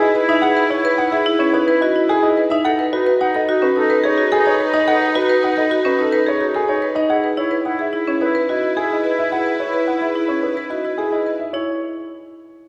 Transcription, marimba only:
0.02 0.19 D#4 medium
0.15 0.33 B4 medium
0.29 0.47 D#4 loud
0.43 0.61 G#4 medium
0.57 0.75 B4 medium
0.71 0.89 E4 medium
0.85 1.03 B4 loud
0.99 1.17 D#4 medium
1.12 1.30 G#4 medium
1.26 1.44 E4 loud
1.40 1.58 C#4 medium
1.54 1.72 D#4 medium
1.68 1.86 B4 loud
1.82 2.00 F#4 medium
1.96 2.14 E4 medium
2.09 2.28 G#4 loud
2.23 2.41 D#4 medium
2.37 2.55 B4 medium
2.52 2.69 D#4 loud
2.65 2.83 A4 medium
2.79 2.97 B4 medium
2.93 3.11 F#4 medium
3.06 3.25 B4 loud
3.21 3.39 D#4 medium
3.34 3.53 A4 medium
3.49 3.67 F#4 loud
3.62 3.80 C#4 medium
3.76 3.94 D#4 medium
3.90 4.08 B4 loud
4.04 4.22 G#4 medium
4.18 4.36 F#4 medium
4.32 4.50 A4 loud
4.46 4.64 D#4 medium
4.60 4.78 B4 medium
4.74 4.92 D#4 loud
4.88 5.05 A4 medium
5.02 5.19 B4 medium
5.15 5.33 F#4 loud
5.29 5.47 B4 loud
5.43 5.61 D#4 medium
5.57 5.75 A4 medium
5.71 5.89 F#4 loud
5.85 6.03 C#4 medium
5.99 6.17 D#4 medium
6.12 6.30 B4 loud
6.26 6.44 G#4 medium
6.40 6.58 F#4 medium
6.55 6.72 A4 medium
6.68 6.86 D#4 medium
6.82 7.00 B4 medium
6.96 7.14 D#4 loud
7.10 7.28 G#4 medium
7.24 7.42 B4 medium
7.37 7.55 E4 medium
7.51 7.69 B4 medium
7.65 7.83 D#4 medium
7.79 7.97 G#4 medium
7.93 8.11 E4 medium
8.07 8.25 C#4 medium
8.21 8.39 D#4 medium
8.35 8.53 B4 medium
8.49 8.67 F#4 medium
8.63 8.81 E4 medium
8.77 8.94 G#4 medium
8.90 9.08 D#4 medium
9.04 9.22 B4 medium
9.32 9.50 G#4 medium
9.46 9.64 B4 medium
9.60 9.78 E4 medium
9.73 9.91 B4 medium
9.88 10.06 D#4 medium
10.02 10.19 G#4 medium
10.16 10.33 E4 medium
10.29 10.47 C#4 medium
10.43 10.61 D#4 medium
10.57 10.75 B4 medium
10.71 10.89 F#4 medium
10.84 11.03 E4 medium
10.98 11.16 G#4 medium
11.12 11.30 D#4 medium
11.26 11.44 B4 medium
11.54 11.80 E4 medium

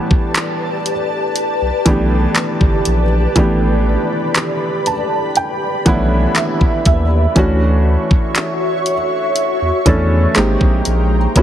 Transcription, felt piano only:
0.00 0.91 E3 medium
0.00 0.92 A3 medium
0.00 0.92 B3 medium
0.00 0.92 D4 medium
0.00 0.93 G4 medium
1.85 3.02 E3 medium
1.85 3.03 A3 medium
1.85 3.03 B3 medium
1.85 3.03 D4 medium
1.85 3.04 G4 medium
3.36 4.91 E3 medium
3.36 4.92 A3 medium
3.36 4.92 B3 medium
3.36 4.92 D4 medium
3.36 4.93 G4 medium
4.87 5.33 A5 medium
5.37 5.83 G5 medium
5.85 7.02 E3 medium
5.85 7.03 A3 medium
5.85 7.03 B3 medium
5.85 5.93 C#4 medium
5.85 7.04 E4 loud
5.85 6.33 F#5 medium
5.94 7.07 D4 medium
6.37 6.83 E5 medium
6.87 7.33 E5 medium
7.35 8.91 E3 medium
7.35 8.92 A3 medium
7.35 8.92 C#4 medium
7.35 8.92 D4 medium
7.35 8.93 F#4 medium
9.86 10.36 E3 medium
9.86 10.36 A3 medium
9.86 10.36 C#4 medium
9.86 10.37 D4 medium
9.86 10.37 A4 medium
10.35 11.16 G#3 medium
10.35 11.16 A#3 medium
10.35 11.16 C4 medium
10.35 11.17 D#4 medium
10.35 11.17 G4 medium
11.35 11.43 G3 medium
11.35 11.43 B3 medium
11.35 11.43 C#4 medium
11.35 11.43 E4 medium
11.35 11.43 F#4 medium

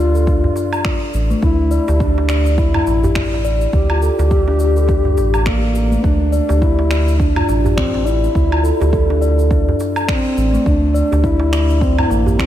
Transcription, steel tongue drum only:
0.00 0.13 D5 medium
0.15 0.27 A4 medium
0.27 0.84 D4 medium
0.84 1.29 D5 medium
1.30 1.42 A3 medium
1.42 1.52 D4 medium
1.71 1.87 D5 medium
1.88 2.00 G4 medium
2.00 2.10 D4 medium
2.29 2.73 D5 medium
2.75 3.02 E4 medium
3.03 3.15 G4 medium
3.16 3.44 D5 medium
3.45 3.74 D5 medium
3.90 4.01 F4 medium
4.02 4.17 A4 medium
4.19 4.31 G4 medium
4.31 4.46 D5 medium
4.47 4.55 D4 medium
4.60 4.75 D5 medium
4.76 4.88 A4 medium
4.88 5.45 D4 medium
5.46 5.90 D5 medium
5.91 6.03 A3 medium
6.03 6.14 D4 medium
6.32 6.48 D5 medium
6.49 6.61 G4 medium
6.62 6.72 D4 medium
6.91 7.35 D5 medium
7.36 7.64 F4 medium
7.65 7.77 G4 medium
7.77 8.04 D5 medium
8.06 8.35 D5 medium
8.51 8.63 F4 medium
8.63 8.79 A4 medium
8.80 8.92 G4 medium
8.92 9.09 A4 loud
9.10 9.17 D4 medium
9.21 9.37 D5 loud
9.38 9.50 A4 medium
9.50 10.07 D4 medium
10.08 10.52 D5 medium
10.53 10.65 A3 medium
10.66 10.76 D4 medium
10.94 11.10 D5 loud
11.11 11.23 G4 medium
11.23 11.33 D4 medium
11.52 11.96 D5 medium
11.98 12.25 E4 medium
12.27 12.38 G4 medium
12.39 12.46 D5 medium

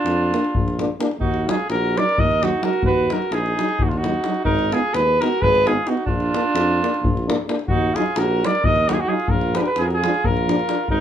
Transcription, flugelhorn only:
0.00 1.01 F4 medium
1.21 1.51 F#4 medium
1.49 1.70 G#4 medium
1.71 1.99 A#4 loud
1.98 2.21 D5 loud
2.19 2.45 D#5 loud
2.44 2.66 F#4 medium
2.65 2.84 A#4 medium
2.86 3.14 B4 medium
3.13 3.35 A#4 medium
3.33 3.84 G#4 loud
3.83 3.90 F#4 medium
3.89 3.98 F4 medium
3.97 4.45 F#4 medium
4.45 4.75 A#4 loud
4.73 4.96 G#4 medium
4.94 5.22 B4 loud
5.21 5.44 A#4 loud
5.42 5.68 B4 loud
5.67 5.90 G#4 medium
5.88 6.07 F#4 medium
6.07 7.44 F4 medium
7.68 7.97 F#4 medium
7.95 8.20 G#4 medium
8.18 8.47 A#4 medium
8.45 8.66 D5 loud
8.65 8.90 D#5 loud
8.89 8.95 F#4 medium
8.93 9.01 G#4 medium
9.00 9.10 F#4 loud
9.09 9.31 G#4 medium
9.29 9.57 A#4 medium
9.56 9.68 A#4 medium
9.56 9.61 B4 medium
9.66 9.80 B4 loud
9.78 9.86 G#4 medium
9.84 9.96 A#4 medium
9.94 10.27 G#4 loud
10.25 10.89 A#4 medium
10.90 11.00 A#4 medium

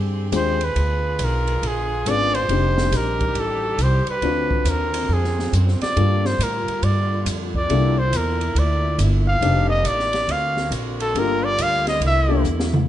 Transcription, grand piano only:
0.32 0.58 G#3 medium
0.32 0.58 C4 medium
0.32 0.58 D4 medium
0.32 0.58 F4 medium
0.32 0.58 G4 medium
2.07 2.32 B3 medium
2.07 2.32 C#4 medium
2.07 2.32 D4 medium
2.07 2.32 F4 medium
2.07 2.32 G#4 medium
2.50 3.70 C4 medium
2.50 3.71 D4 medium
2.50 3.70 D#4 medium
2.50 3.71 G4 soft
2.50 3.71 C5 medium
4.23 5.43 C4 medium
4.23 5.43 D4 medium
4.23 5.43 F4 medium
4.23 5.43 F#4 medium
4.23 5.43 D5 medium
5.96 6.21 A#3 medium
5.96 6.21 D4 medium
5.96 6.21 F4 medium
5.96 6.21 G4 medium
5.96 6.21 A4 medium
7.70 7.94 A#3 medium
7.70 7.95 D4 medium
7.70 7.95 E4 medium
7.70 7.95 G4 medium
7.70 7.95 A4 medium
9.42 9.67 C4 medium
9.42 9.67 D4 medium
9.42 9.67 D#4 medium
9.42 9.68 G4 medium
9.42 9.67 A4 medium
11.16 11.40 A#3 medium
11.16 11.41 D4 medium
11.16 11.41 F4 medium
11.16 11.41 G4 medium
11.16 11.41 A4 medium
12.29 12.43 A#3 medium
12.29 12.43 D4 medium
12.29 12.43 E4 medium
12.29 12.42 G4 medium
12.29 12.43 A4 medium

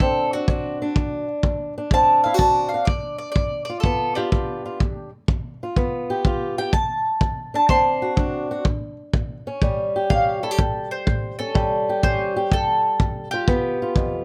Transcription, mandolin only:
0.00 0.31 A4 medium
0.33 1.26 F#4 medium
1.94 2.23 A5 loud
2.24 2.38 F5 medium
2.38 2.68 A5 medium
2.69 2.86 F5 medium
2.85 3.17 D5 medium
3.18 3.30 D5 medium
3.32 3.64 D5 medium
3.65 3.80 D5 medium
3.80 4.14 A4 medium
4.15 5.08 D4 medium
4.15 5.10 G4 medium
6.58 6.73 G5 medium
6.73 7.52 A5 medium
7.55 7.68 A5 medium
7.69 9.10 A5 medium
7.69 8.63 C6 medium
10.10 10.42 F5 medium
10.43 10.90 A4 medium
10.91 11.38 C5 medium
11.39 12.01 A4 medium
12.04 12.50 C5 medium
12.53 13.31 A4 medium
13.31 14.24 G4 medium

